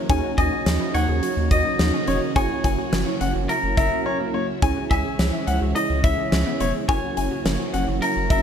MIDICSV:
0, 0, Header, 1, 8, 480
1, 0, Start_track
1, 0, Tempo, 566038
1, 81, Time_signature, 4, 2, 24, 8
1, 7142, End_track
2, 0, Start_track
2, 0, Title_t, "Grand piano"
2, 0, Program_c, 0, 0
2, 82, Note_on_c, 0, 80, 106
2, 256, Note_off_c, 0, 80, 0
2, 321, Note_on_c, 0, 80, 79
2, 660, Note_off_c, 0, 80, 0
2, 801, Note_on_c, 0, 78, 81
2, 889, Note_off_c, 0, 78, 0
2, 1282, Note_on_c, 0, 75, 72
2, 1456, Note_off_c, 0, 75, 0
2, 1761, Note_on_c, 0, 73, 83
2, 1849, Note_off_c, 0, 73, 0
2, 2001, Note_on_c, 0, 80, 103
2, 2176, Note_off_c, 0, 80, 0
2, 2240, Note_on_c, 0, 80, 73
2, 2579, Note_off_c, 0, 80, 0
2, 2721, Note_on_c, 0, 78, 78
2, 2808, Note_off_c, 0, 78, 0
2, 3201, Note_on_c, 0, 76, 86
2, 3376, Note_off_c, 0, 76, 0
2, 3441, Note_on_c, 0, 73, 84
2, 3529, Note_off_c, 0, 73, 0
2, 3682, Note_on_c, 0, 73, 79
2, 3769, Note_off_c, 0, 73, 0
2, 3922, Note_on_c, 0, 80, 103
2, 4097, Note_off_c, 0, 80, 0
2, 4163, Note_on_c, 0, 80, 76
2, 4500, Note_off_c, 0, 80, 0
2, 4641, Note_on_c, 0, 78, 80
2, 4729, Note_off_c, 0, 78, 0
2, 5121, Note_on_c, 0, 76, 75
2, 5296, Note_off_c, 0, 76, 0
2, 5601, Note_on_c, 0, 73, 83
2, 5689, Note_off_c, 0, 73, 0
2, 5841, Note_on_c, 0, 80, 102
2, 6016, Note_off_c, 0, 80, 0
2, 6080, Note_on_c, 0, 80, 72
2, 6419, Note_off_c, 0, 80, 0
2, 6560, Note_on_c, 0, 78, 77
2, 6648, Note_off_c, 0, 78, 0
2, 7041, Note_on_c, 0, 76, 84
2, 7142, Note_off_c, 0, 76, 0
2, 7142, End_track
3, 0, Start_track
3, 0, Title_t, "Clean electric guitar"
3, 0, Program_c, 1, 27
3, 321, Note_on_c, 1, 75, 108
3, 798, Note_off_c, 1, 75, 0
3, 801, Note_on_c, 1, 73, 109
3, 1278, Note_off_c, 1, 73, 0
3, 1281, Note_on_c, 1, 75, 108
3, 1999, Note_off_c, 1, 75, 0
3, 2003, Note_on_c, 1, 73, 92
3, 2688, Note_off_c, 1, 73, 0
3, 2962, Note_on_c, 1, 70, 111
3, 3191, Note_off_c, 1, 70, 0
3, 3202, Note_on_c, 1, 70, 110
3, 3648, Note_off_c, 1, 70, 0
3, 4161, Note_on_c, 1, 76, 110
3, 4847, Note_off_c, 1, 76, 0
3, 4879, Note_on_c, 1, 75, 101
3, 5104, Note_off_c, 1, 75, 0
3, 5120, Note_on_c, 1, 76, 107
3, 5807, Note_off_c, 1, 76, 0
3, 5839, Note_on_c, 1, 73, 87
3, 6526, Note_off_c, 1, 73, 0
3, 6801, Note_on_c, 1, 70, 110
3, 7031, Note_off_c, 1, 70, 0
3, 7042, Note_on_c, 1, 70, 109
3, 7142, Note_off_c, 1, 70, 0
3, 7142, End_track
4, 0, Start_track
4, 0, Title_t, "Analog polysynth"
4, 0, Program_c, 2, 90
4, 81, Note_on_c, 2, 61, 83
4, 81, Note_on_c, 2, 66, 74
4, 81, Note_on_c, 2, 70, 77
4, 81, Note_on_c, 2, 73, 89
4, 82, Note_on_c, 2, 63, 77
4, 1967, Note_off_c, 2, 61, 0
4, 1967, Note_off_c, 2, 66, 0
4, 1967, Note_off_c, 2, 70, 0
4, 1967, Note_off_c, 2, 73, 0
4, 1968, Note_off_c, 2, 63, 0
4, 2001, Note_on_c, 2, 61, 69
4, 2001, Note_on_c, 2, 64, 66
4, 2001, Note_on_c, 2, 66, 64
4, 2001, Note_on_c, 2, 70, 65
4, 2001, Note_on_c, 2, 73, 79
4, 3887, Note_off_c, 2, 61, 0
4, 3887, Note_off_c, 2, 64, 0
4, 3887, Note_off_c, 2, 66, 0
4, 3887, Note_off_c, 2, 70, 0
4, 3887, Note_off_c, 2, 73, 0
4, 3921, Note_on_c, 2, 61, 84
4, 3921, Note_on_c, 2, 64, 77
4, 3921, Note_on_c, 2, 68, 79
4, 3921, Note_on_c, 2, 73, 92
4, 5807, Note_off_c, 2, 61, 0
4, 5807, Note_off_c, 2, 64, 0
4, 5807, Note_off_c, 2, 68, 0
4, 5807, Note_off_c, 2, 73, 0
4, 5841, Note_on_c, 2, 66, 66
4, 5842, Note_on_c, 2, 61, 69
4, 5842, Note_on_c, 2, 64, 65
4, 5842, Note_on_c, 2, 70, 63
4, 5842, Note_on_c, 2, 73, 77
4, 7142, Note_off_c, 2, 61, 0
4, 7142, Note_off_c, 2, 64, 0
4, 7142, Note_off_c, 2, 66, 0
4, 7142, Note_off_c, 2, 70, 0
4, 7142, Note_off_c, 2, 73, 0
4, 7142, End_track
5, 0, Start_track
5, 0, Title_t, "Synth pluck"
5, 0, Program_c, 3, 84
5, 81, Note_on_c, 3, 68, 99
5, 186, Note_off_c, 3, 68, 0
5, 201, Note_on_c, 3, 66, 77
5, 306, Note_off_c, 3, 66, 0
5, 321, Note_on_c, 3, 63, 79
5, 426, Note_off_c, 3, 63, 0
5, 441, Note_on_c, 3, 66, 75
5, 546, Note_off_c, 3, 66, 0
5, 561, Note_on_c, 3, 61, 88
5, 666, Note_off_c, 3, 61, 0
5, 681, Note_on_c, 3, 64, 79
5, 786, Note_off_c, 3, 64, 0
5, 801, Note_on_c, 3, 63, 81
5, 906, Note_off_c, 3, 63, 0
5, 921, Note_on_c, 3, 68, 74
5, 1026, Note_off_c, 3, 68, 0
5, 1042, Note_on_c, 3, 66, 93
5, 1251, Note_off_c, 3, 66, 0
5, 1282, Note_on_c, 3, 66, 85
5, 1491, Note_off_c, 3, 66, 0
5, 1521, Note_on_c, 3, 63, 86
5, 1626, Note_off_c, 3, 63, 0
5, 1641, Note_on_c, 3, 61, 79
5, 1746, Note_off_c, 3, 61, 0
5, 1761, Note_on_c, 3, 61, 82
5, 1970, Note_off_c, 3, 61, 0
5, 2001, Note_on_c, 3, 68, 98
5, 2106, Note_off_c, 3, 68, 0
5, 2121, Note_on_c, 3, 66, 74
5, 2226, Note_off_c, 3, 66, 0
5, 2241, Note_on_c, 3, 64, 78
5, 2346, Note_off_c, 3, 64, 0
5, 2361, Note_on_c, 3, 66, 75
5, 2466, Note_off_c, 3, 66, 0
5, 2481, Note_on_c, 3, 61, 85
5, 2586, Note_off_c, 3, 61, 0
5, 2601, Note_on_c, 3, 64, 80
5, 2706, Note_off_c, 3, 64, 0
5, 2721, Note_on_c, 3, 61, 82
5, 2826, Note_off_c, 3, 61, 0
5, 2842, Note_on_c, 3, 66, 74
5, 2946, Note_off_c, 3, 66, 0
5, 2961, Note_on_c, 3, 64, 93
5, 3171, Note_off_c, 3, 64, 0
5, 3202, Note_on_c, 3, 64, 80
5, 3411, Note_off_c, 3, 64, 0
5, 3441, Note_on_c, 3, 61, 91
5, 3545, Note_off_c, 3, 61, 0
5, 3561, Note_on_c, 3, 58, 77
5, 3665, Note_off_c, 3, 58, 0
5, 3681, Note_on_c, 3, 58, 80
5, 3890, Note_off_c, 3, 58, 0
5, 3920, Note_on_c, 3, 68, 98
5, 4025, Note_off_c, 3, 68, 0
5, 4041, Note_on_c, 3, 66, 75
5, 4146, Note_off_c, 3, 66, 0
5, 4161, Note_on_c, 3, 64, 81
5, 4266, Note_off_c, 3, 64, 0
5, 4282, Note_on_c, 3, 68, 77
5, 4386, Note_off_c, 3, 68, 0
5, 4401, Note_on_c, 3, 61, 89
5, 4506, Note_off_c, 3, 61, 0
5, 4521, Note_on_c, 3, 64, 78
5, 4626, Note_off_c, 3, 64, 0
5, 4641, Note_on_c, 3, 61, 82
5, 4746, Note_off_c, 3, 61, 0
5, 4762, Note_on_c, 3, 66, 76
5, 4866, Note_off_c, 3, 66, 0
5, 4882, Note_on_c, 3, 64, 96
5, 5091, Note_off_c, 3, 64, 0
5, 5122, Note_on_c, 3, 64, 86
5, 5331, Note_off_c, 3, 64, 0
5, 5362, Note_on_c, 3, 61, 90
5, 5466, Note_off_c, 3, 61, 0
5, 5482, Note_on_c, 3, 59, 76
5, 5586, Note_off_c, 3, 59, 0
5, 5602, Note_on_c, 3, 59, 83
5, 5811, Note_off_c, 3, 59, 0
5, 5842, Note_on_c, 3, 68, 97
5, 5946, Note_off_c, 3, 68, 0
5, 5963, Note_on_c, 3, 66, 74
5, 6067, Note_off_c, 3, 66, 0
5, 6083, Note_on_c, 3, 64, 81
5, 6187, Note_off_c, 3, 64, 0
5, 6202, Note_on_c, 3, 66, 76
5, 6306, Note_off_c, 3, 66, 0
5, 6323, Note_on_c, 3, 61, 88
5, 6427, Note_off_c, 3, 61, 0
5, 6443, Note_on_c, 3, 64, 79
5, 6547, Note_off_c, 3, 64, 0
5, 6563, Note_on_c, 3, 61, 86
5, 6667, Note_off_c, 3, 61, 0
5, 6683, Note_on_c, 3, 66, 74
5, 6787, Note_off_c, 3, 66, 0
5, 6803, Note_on_c, 3, 64, 94
5, 7012, Note_off_c, 3, 64, 0
5, 7042, Note_on_c, 3, 64, 83
5, 7142, Note_off_c, 3, 64, 0
5, 7142, End_track
6, 0, Start_track
6, 0, Title_t, "String machine"
6, 0, Program_c, 4, 50
6, 0, Note_on_c, 4, 54, 79
6, 0, Note_on_c, 4, 58, 76
6, 80, Note_on_c, 4, 49, 84
6, 80, Note_on_c, 4, 63, 76
6, 80, Note_on_c, 4, 66, 93
6, 1981, Note_off_c, 4, 63, 0
6, 2001, Note_on_c, 4, 64, 78
6, 3887, Note_off_c, 4, 49, 0
6, 3887, Note_off_c, 4, 66, 0
6, 3888, Note_off_c, 4, 54, 0
6, 3888, Note_off_c, 4, 58, 0
6, 3921, Note_on_c, 4, 49, 86
6, 3922, Note_on_c, 4, 52, 81
6, 3922, Note_on_c, 4, 56, 80
6, 3922, Note_on_c, 4, 61, 79
6, 5807, Note_off_c, 4, 64, 0
6, 5822, Note_off_c, 4, 56, 0
6, 5822, Note_off_c, 4, 61, 0
6, 5823, Note_off_c, 4, 52, 0
6, 5840, Note_on_c, 4, 54, 81
6, 5840, Note_on_c, 4, 64, 78
6, 5841, Note_on_c, 4, 66, 94
6, 5842, Note_on_c, 4, 58, 79
6, 7142, Note_off_c, 4, 49, 0
6, 7142, Note_off_c, 4, 54, 0
6, 7142, Note_off_c, 4, 58, 0
6, 7142, Note_off_c, 4, 64, 0
6, 7142, Note_off_c, 4, 66, 0
6, 7142, End_track
7, 0, Start_track
7, 0, Title_t, "Analog synth bass"
7, 0, Program_c, 5, 38
7, 81, Note_on_c, 5, 39, 111
7, 186, Note_off_c, 5, 39, 0
7, 322, Note_on_c, 5, 39, 97
7, 427, Note_off_c, 5, 39, 0
7, 561, Note_on_c, 5, 39, 99
7, 666, Note_off_c, 5, 39, 0
7, 801, Note_on_c, 5, 39, 108
7, 906, Note_off_c, 5, 39, 0
7, 921, Note_on_c, 5, 39, 98
7, 1026, Note_off_c, 5, 39, 0
7, 1160, Note_on_c, 5, 39, 97
7, 1266, Note_off_c, 5, 39, 0
7, 1281, Note_on_c, 5, 39, 102
7, 1386, Note_off_c, 5, 39, 0
7, 1520, Note_on_c, 5, 39, 104
7, 1626, Note_off_c, 5, 39, 0
7, 1761, Note_on_c, 5, 28, 93
7, 1867, Note_off_c, 5, 28, 0
7, 2001, Note_on_c, 5, 30, 112
7, 2106, Note_off_c, 5, 30, 0
7, 2241, Note_on_c, 5, 30, 98
7, 2347, Note_off_c, 5, 30, 0
7, 2481, Note_on_c, 5, 30, 99
7, 2586, Note_off_c, 5, 30, 0
7, 2721, Note_on_c, 5, 30, 109
7, 2826, Note_off_c, 5, 30, 0
7, 2841, Note_on_c, 5, 30, 99
7, 2947, Note_off_c, 5, 30, 0
7, 3081, Note_on_c, 5, 30, 101
7, 3186, Note_off_c, 5, 30, 0
7, 3201, Note_on_c, 5, 30, 97
7, 3306, Note_off_c, 5, 30, 0
7, 3921, Note_on_c, 5, 37, 105
7, 4026, Note_off_c, 5, 37, 0
7, 4162, Note_on_c, 5, 37, 104
7, 4267, Note_off_c, 5, 37, 0
7, 4401, Note_on_c, 5, 37, 105
7, 4506, Note_off_c, 5, 37, 0
7, 4641, Note_on_c, 5, 37, 108
7, 4747, Note_off_c, 5, 37, 0
7, 4761, Note_on_c, 5, 37, 95
7, 4866, Note_off_c, 5, 37, 0
7, 5001, Note_on_c, 5, 37, 95
7, 5107, Note_off_c, 5, 37, 0
7, 5121, Note_on_c, 5, 37, 93
7, 5226, Note_off_c, 5, 37, 0
7, 5361, Note_on_c, 5, 37, 103
7, 5466, Note_off_c, 5, 37, 0
7, 5601, Note_on_c, 5, 28, 91
7, 5706, Note_off_c, 5, 28, 0
7, 5841, Note_on_c, 5, 30, 111
7, 5947, Note_off_c, 5, 30, 0
7, 6081, Note_on_c, 5, 30, 102
7, 6186, Note_off_c, 5, 30, 0
7, 6320, Note_on_c, 5, 30, 107
7, 6426, Note_off_c, 5, 30, 0
7, 6561, Note_on_c, 5, 30, 109
7, 6667, Note_off_c, 5, 30, 0
7, 6681, Note_on_c, 5, 30, 96
7, 6787, Note_off_c, 5, 30, 0
7, 6922, Note_on_c, 5, 30, 101
7, 7027, Note_off_c, 5, 30, 0
7, 7040, Note_on_c, 5, 30, 95
7, 7142, Note_off_c, 5, 30, 0
7, 7142, End_track
8, 0, Start_track
8, 0, Title_t, "Drums"
8, 81, Note_on_c, 9, 36, 123
8, 81, Note_on_c, 9, 42, 78
8, 165, Note_off_c, 9, 42, 0
8, 166, Note_off_c, 9, 36, 0
8, 320, Note_on_c, 9, 42, 78
8, 321, Note_on_c, 9, 36, 97
8, 405, Note_off_c, 9, 42, 0
8, 406, Note_off_c, 9, 36, 0
8, 562, Note_on_c, 9, 42, 86
8, 563, Note_on_c, 9, 38, 113
8, 647, Note_off_c, 9, 42, 0
8, 648, Note_off_c, 9, 38, 0
8, 802, Note_on_c, 9, 42, 73
8, 887, Note_off_c, 9, 42, 0
8, 1042, Note_on_c, 9, 42, 72
8, 1126, Note_off_c, 9, 42, 0
8, 1280, Note_on_c, 9, 36, 101
8, 1281, Note_on_c, 9, 42, 65
8, 1365, Note_off_c, 9, 36, 0
8, 1366, Note_off_c, 9, 42, 0
8, 1521, Note_on_c, 9, 38, 116
8, 1523, Note_on_c, 9, 42, 59
8, 1606, Note_off_c, 9, 38, 0
8, 1608, Note_off_c, 9, 42, 0
8, 1759, Note_on_c, 9, 42, 70
8, 1844, Note_off_c, 9, 42, 0
8, 2001, Note_on_c, 9, 36, 120
8, 2001, Note_on_c, 9, 42, 81
8, 2086, Note_off_c, 9, 36, 0
8, 2086, Note_off_c, 9, 42, 0
8, 2240, Note_on_c, 9, 42, 77
8, 2241, Note_on_c, 9, 36, 93
8, 2325, Note_off_c, 9, 42, 0
8, 2326, Note_off_c, 9, 36, 0
8, 2481, Note_on_c, 9, 42, 87
8, 2482, Note_on_c, 9, 38, 118
8, 2566, Note_off_c, 9, 42, 0
8, 2567, Note_off_c, 9, 38, 0
8, 2721, Note_on_c, 9, 42, 74
8, 2806, Note_off_c, 9, 42, 0
8, 2961, Note_on_c, 9, 42, 69
8, 3046, Note_off_c, 9, 42, 0
8, 3200, Note_on_c, 9, 36, 100
8, 3200, Note_on_c, 9, 42, 66
8, 3285, Note_off_c, 9, 36, 0
8, 3285, Note_off_c, 9, 42, 0
8, 3921, Note_on_c, 9, 36, 120
8, 3921, Note_on_c, 9, 42, 82
8, 4006, Note_off_c, 9, 36, 0
8, 4006, Note_off_c, 9, 42, 0
8, 4161, Note_on_c, 9, 42, 76
8, 4162, Note_on_c, 9, 36, 97
8, 4246, Note_off_c, 9, 42, 0
8, 4247, Note_off_c, 9, 36, 0
8, 4402, Note_on_c, 9, 42, 90
8, 4403, Note_on_c, 9, 38, 120
8, 4487, Note_off_c, 9, 42, 0
8, 4488, Note_off_c, 9, 38, 0
8, 4642, Note_on_c, 9, 42, 74
8, 4727, Note_off_c, 9, 42, 0
8, 4882, Note_on_c, 9, 42, 69
8, 4967, Note_off_c, 9, 42, 0
8, 5121, Note_on_c, 9, 36, 101
8, 5122, Note_on_c, 9, 42, 64
8, 5206, Note_off_c, 9, 36, 0
8, 5206, Note_off_c, 9, 42, 0
8, 5362, Note_on_c, 9, 38, 114
8, 5364, Note_on_c, 9, 42, 59
8, 5447, Note_off_c, 9, 38, 0
8, 5448, Note_off_c, 9, 42, 0
8, 5600, Note_on_c, 9, 42, 71
8, 5685, Note_off_c, 9, 42, 0
8, 5841, Note_on_c, 9, 36, 124
8, 5842, Note_on_c, 9, 42, 79
8, 5926, Note_off_c, 9, 36, 0
8, 5926, Note_off_c, 9, 42, 0
8, 6081, Note_on_c, 9, 42, 77
8, 6166, Note_off_c, 9, 42, 0
8, 6322, Note_on_c, 9, 42, 87
8, 6323, Note_on_c, 9, 38, 117
8, 6407, Note_off_c, 9, 42, 0
8, 6408, Note_off_c, 9, 38, 0
8, 6562, Note_on_c, 9, 42, 76
8, 6647, Note_off_c, 9, 42, 0
8, 6802, Note_on_c, 9, 42, 72
8, 6886, Note_off_c, 9, 42, 0
8, 7040, Note_on_c, 9, 42, 65
8, 7041, Note_on_c, 9, 36, 102
8, 7125, Note_off_c, 9, 36, 0
8, 7125, Note_off_c, 9, 42, 0
8, 7142, End_track
0, 0, End_of_file